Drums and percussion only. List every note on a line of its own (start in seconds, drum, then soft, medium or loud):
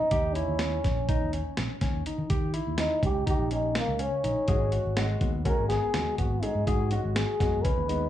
0.11 kick loud
0.11 closed hi-hat medium
0.35 closed hi-hat soft
0.59 snare loud
0.59 closed hi-hat medium
0.84 kick medium
0.84 snare soft
0.84 closed hi-hat medium
1.09 kick loud
1.09 closed hi-hat medium
1.33 closed hi-hat medium
1.57 snare loud
1.57 closed hi-hat medium
1.81 kick medium
1.81 snare soft
1.81 closed hi-hat medium
2.06 closed hi-hat medium
2.30 kick loud
2.30 closed hi-hat medium
2.54 closed hi-hat medium
2.78 snare loud
2.78 closed hi-hat medium
3.03 kick medium
3.03 closed hi-hat medium
3.27 kick loud
3.27 closed hi-hat medium
3.51 closed hi-hat medium
3.75 snare loud
3.75 closed hi-hat medium
3.99 closed hi-hat medium
4.24 closed hi-hat medium
4.48 kick loud
4.48 closed hi-hat medium
4.72 closed hi-hat medium
4.97 snare loud
4.97 closed hi-hat medium
5.21 kick medium
5.21 closed hi-hat soft
5.45 kick loud
5.45 closed hi-hat medium
5.70 snare soft
5.70 closed hi-hat medium
5.94 snare loud
5.94 closed hi-hat medium
6.18 kick medium
6.18 closed hi-hat medium
6.43 closed hi-hat medium
6.67 kick loud
6.67 closed hi-hat medium
6.91 closed hi-hat medium
7.16 snare loud
7.16 closed hi-hat medium
7.40 kick medium
7.40 snare soft
7.40 closed hi-hat medium
7.65 kick loud
7.65 closed hi-hat medium
7.89 closed hi-hat medium